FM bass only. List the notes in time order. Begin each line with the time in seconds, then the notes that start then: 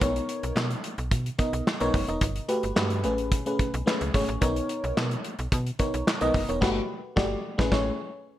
0.01 B1
0.43 B1
0.56 B2
0.98 B1
1.11 B2
1.53 B1
1.81 B1
1.94 F#1
2.09 E1
2.21 G1
2.64 G1
2.76 G2
3.04 A1
3.74 B1
4.01 C#2
4.14 G#1
4.29 A1
4.42 B1
4.84 B1
4.97 B2
5.39 B1
5.52 B2
5.94 B1
6.22 B1
6.34 F#1
6.49 E1
6.62 G1
7.17 G1
7.59 A1
7.72 A1